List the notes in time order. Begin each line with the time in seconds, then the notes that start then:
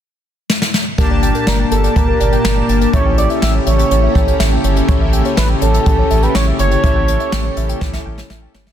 0.50 snare
0.62 snare
0.74 snare
0.98 G1 A#2 A#3 D4 G4 A#4 A5, kick, closed hi-hat
1.11 D5
1.23 G5, closed hi-hat
1.35 A#4, closed hi-hat
1.47 G1 A#4 D5, snare
1.59 G5
1.71 G1 A4 A#4, closed hi-hat
1.84 D5, closed hi-hat
1.96 G1 A#4 G5, kick, closed hi-hat
2.08 A#4
2.20 G1 D5, closed hi-hat
2.33 G5, closed hi-hat
2.45 G1 A#4, snare
2.57 D5
2.69 G1 G5, closed hi-hat
2.81 A#4, closed hi-hat
2.93 A1 C#3 C#4 E4 G4 A4 C#5 E5, kick, closed hi-hat
3.06 G5
3.18 C#5 D5, closed hi-hat
3.30 E5, closed hi-hat
3.42 A1 E5 G5, snare
3.54 C#5
3.67 A1 C#5 E5, closed hi-hat
3.79 G5, closed hi-hat
3.91 A1 C#5, closed hi-hat
4.03 E5
4.15 A1 G5, kick, closed hi-hat
4.28 C#5, closed hi-hat
4.40 A1 E5, snare
4.52 G5
4.64 G1 C#5, closed hi-hat
4.76 E5, closed hi-hat
4.89 A1 C#5, kick, closed hi-hat
5.01 E5
5.13 G5, closed hi-hat
5.25 C#5, closed hi-hat
5.37 A1 B4 E5, snare
5.50 G5
5.62 A1 A4 C#5, closed hi-hat
5.74 E5, closed hi-hat
5.86 A1 G5, kick, closed hi-hat
5.98 C#5
6.11 A1 E5, closed hi-hat
6.23 B4 G5, closed hi-hat
6.35 A1 C#5, snare
6.47 E5
6.59 G1 C#5 G5, closed hi-hat
6.71 C#5, closed hi-hat
6.84 A1 C#4 E4 G4 A4 E5, kick, closed hi-hat
6.96 G5
7.08 C#5, closed hi-hat
7.20 E5, closed hi-hat
7.32 A1 G5, snare
7.45 C#5
7.57 A1 E5, closed hi-hat
7.69 G5, closed hi-hat
7.81 A1 C#5, kick, snare
7.93 E5, snare
8.06 A1 G5
8.18 C#5, snare
8.30 A1 E5, snare
8.42 G5
8.54 G1 C#5, snare
8.67 E5, snare